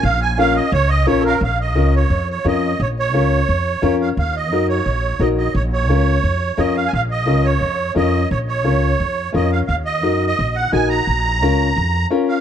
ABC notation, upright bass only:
X:1
M:4/4
L:1/8
Q:1/4=174
K:Bbm
V:1 name="Upright bass" clef=bass
B,,,4 D,,2 B,,,2 | B,,,2 D,,2 F,,2 F,,2 | B,,,2 D,,2 F,,2 F,,2 | E,,2 G,,2 B,,,2 B,,,2 |
B,,,2 D,,2 F,,2 F,,2 | B,,,2 D,,2 F,,2 F,,2 | B,,,2 D,,2 F,,2 F,,2 | E,,2 G,,2 B,,,2 B,,,2 |
B,,,2 D,,2 F,,2 z2 |]